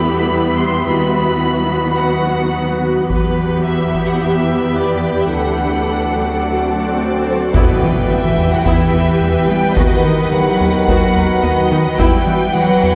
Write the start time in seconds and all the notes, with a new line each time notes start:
Already playing: E2 G3 B3 E4 G4 B4 B5
0.59 C6
0.87 D#2 F#3 F#4 B5
1.99 F#5
3.10 E2 E3 B3 G4 B4, taiko
3.66 E5
3.94 taiko
4.07 F#5
4.20 E5
4.76 D5
5.19 E5
5.32 D2 F#3 A3 D4 F#4 A4 D5 F#5, swell
7.54 E2 B2 E3 B3 E4 G4 B4 G5, taiko, impact
7.82 E3 B3
8.10 E3 G3 B3 E5
8.38 E2
8.52 F#3 F#5
8.65 E2 E3 B3 E4 E5, taiko
8.93 E2
9.21 E2 G3 B3
9.49 E3 G3 B3 G5
9.76 D#2 D#3 F#3 B3 F#4 D#5 F#5, taiko
10.05 D#3 B3 D#4
10.31 D#3 F#3 B3 F#5
10.60 D#2
10.87 D#2 F#3 B3 F#4 F#5, taiko
11.16 D#2
11.43 D#2 D#3 B3 D#5
11.71 D#3 B3 D#4
11.86 D#3 D#5
11.98 E2 E3 G3 B3 E4 B4 G5, taiko
12.26 E3 B3
12.54 E3 F#3 G3 B3 F#5
12.83 E2